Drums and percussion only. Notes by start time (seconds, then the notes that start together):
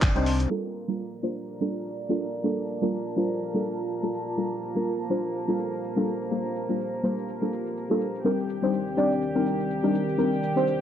0.02 kick, clap
0.16 closed hi-hat
0.26 open hi-hat
0.40 closed hi-hat
0.75 shaker
0.89 shaker
1.00 shaker
1.13 shaker
1.24 shaker
1.38 shaker
1.48 shaker
1.62 shaker
1.72 shaker
1.86 shaker
1.96 shaker
2.10 shaker
2.21 shaker
2.34 shaker
2.45 shaker
2.59 shaker
2.69 shaker
2.83 shaker
2.93 shaker
3.07 shaker
3.17 shaker
3.31 shaker
3.42 shaker
3.55 shaker
3.66 shaker
3.80 shaker
3.90 shaker
4.04 shaker
4.14 shaker
4.28 shaker
4.38 shaker
4.52 shaker
4.62 shaker
4.76 shaker
4.87 shaker
5.01 shaker
5.11 shaker
5.25 shaker
5.35 shaker
5.49 shaker
5.59 shaker
5.73 shaker
5.83 shaker
5.97 shaker
6.08 shaker
6.21 shaker
6.32 shaker
6.46 shaker
6.56 shaker
6.70 shaker
6.80 shaker
6.94 shaker
7.04 shaker
7.18 shaker
7.29 shaker
7.43 shaker
7.53 shaker
7.67 shaker
7.77 shaker
7.91 shaker
8.01 shaker
8.15 shaker
8.25 shaker
8.39 shaker
8.50 shaker
8.63 shaker
8.74 shaker
8.88 shaker
8.98 shaker
9.12 shaker
9.22 shaker
9.36 shaker
9.46 shaker
9.60 shaker
9.71 shaker
9.84 shaker
9.95 shaker
10.09 shaker
10.19 shaker
10.33 shaker
10.43 shaker
10.57 shaker
10.67 shaker